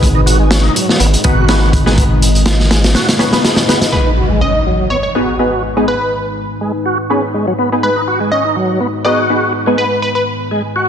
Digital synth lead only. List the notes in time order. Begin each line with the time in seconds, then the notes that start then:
3.92 B4
4.41 D#5
4.90 C#5
5.03 C#5
5.88 B4
7.83 B4
8.32 D#5
9.05 D#5
9.78 B4
10.02 B4
10.15 B4